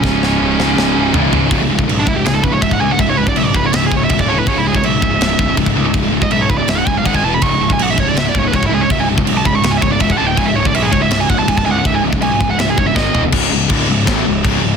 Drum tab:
CC |----------------|x---x---x---x---|x---x---x---x---|x---x---x---x---|
SD |o-o---o-o-------|--------o-------|--------o-------|--------o-------|
FT |------------o-o-|----------------|----------------|----------------|
BD |o---------------|o--o--o---o-oo--|o--o--o---o-oo--|o--o--o---o-oo--|

CC |x---x---x---x---|x---x---x---x---|x---x---x---x---|x---x---x---x---|
SD |--------o-------|--------o-------|--------o-------|--------o-------|
FT |----------------|----------------|----------------|----------------|
BD |o--o--o---o-oo--|o--o--o---o-oo--|o--o--o---o-oo--|o--o--o---o-oo--|

CC |x---x---x-------|x---x---x---x---|
SD |--------o---o---|--------o-------|
FT |--------------o-|----------------|
BD |o--o--o---o-o---|o---o---o---o---|